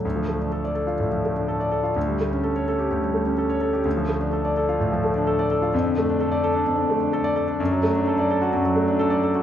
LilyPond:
\new Staff \with { instrumentName = "Grand piano" } { \time 4/4 \key d \minor \tempo 4 = 127 d,16 f16 a16 d'16 a'16 d''16 a'16 f'16 a,16 f16 a16 d'16 a'16 d''16 a'16 f'16 | d,16 g16 a16 cis'16 a'16 cis''16 a'16 g'16 d,16 g16 a16 cis'16 a'16 cis''16 a'16 g'16 | d,16 f16 a16 d'16 a'16 d''16 a'16 f'16 a,16 f16 a16 d'16 a'16 d''16 a'16 f'16 | f,16 d16 a16 d'16 a'16 d''16 a'16 d'16 f,16 d16 a16 d'16 a'16 d''16 a'16 d'16 |
\key d \major fis,16 fis16 a16 d'16 a'16 d''16 a'16 fis'16 fis,16 fis16 a16 d'16 a'16 d''16 a'16 fis'16 | }